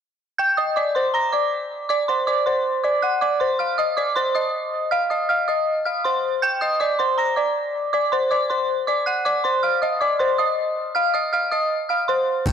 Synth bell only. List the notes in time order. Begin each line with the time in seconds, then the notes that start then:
0.38 G5 G6
0.57 D#5 D#6
0.76 D5 D6
0.95 C5 C6
1.14 A#5 A#6
1.32 D5 D6
1.89 D5 D6
2.08 C5 C6
2.27 D5 D6
2.46 C5 C6
2.84 D5 D6
3.02 F#5 F#6
3.21 D5 D6
3.40 C5 C6
3.59 F5 F6
3.78 D#5 D#6
3.97 D5 D6
4.16 C5 C6
4.35 D#5 D#6
4.91 F5 F6
5.10 D#5 D#6
5.29 F5 F6
5.48 D#5 D#6
5.85 F5 F6
6.04 C5 C6
6.42 G5 G6
6.61 D#5 D#6
6.80 D5 D6
6.99 C5 C6
7.18 A#5 A#6
7.36 D5 D6
7.93 D5 D6
8.12 C5 C6
8.31 D5 D6
8.50 C5 C6
8.87 D5 D6
9.06 F#5 F#6
9.25 D5 D6
9.44 C5 C6
9.63 F5 F6
9.82 D#5 D#6
10.01 D5 D6
10.19 C5 C6
10.38 D#5 D#6
10.95 F5 F6
11.14 D#5 D#6
11.33 F5 F6
11.51 D#5 D#6
11.89 F5 F6
12.08 C5 C6
12.46 G5 G6